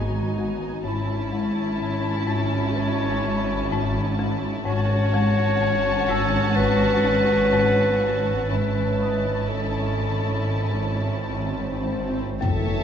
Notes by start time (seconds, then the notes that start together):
Already playing: G#1 G#2 B3 D#4 F#4 C#5 G#5 C#6
0.39 G#3
0.84 G#1 G#2 C#4 E4 A5 B5
1.33 G#3
1.80 G#2
2.27 G#2
2.77 G#2 C#5
3.25 G#2
3.73 G#2
4.19 G#3
4.65 G#1 G#2 C#4 F#4 C#5 A5
5.14 G#3
5.61 G#2
6.09 G#2 E6
6.55 G#2 B4
7.05 G#2
7.53 G#2
8.01 G#3
8.47 G#1 G#2 C#4 E4 B4 A5, swell
9.00 G#3 D#5 D#6
9.48 G#2 A4
9.98 G#2
10.47 G#2
10.94 G#2
11.44 G#2
11.92 G#3
12.41 F#1 F#2 E3 A3 C#5 E5 A5, impact